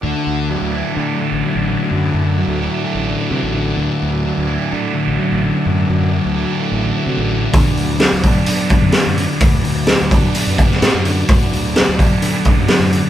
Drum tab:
HH |----------------|----------------|----------------|----------------|
SD |----------------|----------------|----------------|----------------|
BD |----------------|----------------|----------------|----------------|

HH |o-o-o-o-o-o-o-o-|o-o-o-o-o-o-o-o-|o-o-o-o-o-o-o-o-|
SD |----o-------o---|----o------oo---|----o-------o---|
BD |o-----o---o-----|o-----o---o-----|o-----o---o-----|